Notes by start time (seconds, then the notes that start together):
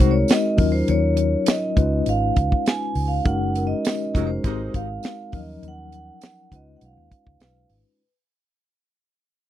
Already playing: D#3 G#3 C4 D#4 F#4 A#4 C5
0.00 C2, kick, closed hi-hat
0.11 C#5
0.28 D#5, snare, closed hi-hat, tambourine
0.57 D#2 F#3 C#4 D#4 F4 A#4, kick, open hi-hat
0.72 C5
0.88 D#2 C#5, closed hi-hat
1.17 closed hi-hat
1.46 D#5, snare, closed hi-hat, tambourine
1.76 C#2 G#3 C#4 D#4 F4 B4, kick, closed hi-hat
2.06 G#1 F5, closed hi-hat
2.36 C#2, kick, closed hi-hat
2.52 kick
2.66 G#5, snare, closed hi-hat, tambourine
2.95 C#2, open hi-hat
3.08 F5
3.25 F#1 G#3 C#4 D#4 F#4 A#4 F#5, kick, closed hi-hat
3.55 A#4, closed hi-hat
3.67 D#5
3.85 snare, closed hi-hat, tambourine
4.15 F1 A#2 F#3 G#3 C#4 D#4 F#4 A#4, kick, closed hi-hat
4.27 C5
4.44 G#1 C3 G#3 C4 D#4 F#4 A#4 C5, kick, closed hi-hat
4.74 G#1 F5, kick, closed hi-hat
5.03 snare, closed hi-hat, tambourine
5.32 D#2 F3 F#3 C#4 D#4 A#4 D#5, kick, open hi-hat
5.63 D#2, closed hi-hat
5.68 F#5
5.92 F#5, closed hi-hat
6.21 snare, closed hi-hat, tambourine
6.52 C#2 G#3 C#4 D#4 F4 B4 D#5, kick, closed hi-hat
6.76 F#5
6.81 B1 F5, closed hi-hat
6.97 D#2
7.12 kick, closed hi-hat
7.27 C#2, kick
7.40 B1 B4, snare, closed hi-hat, tambourine
7.70 G#1, open hi-hat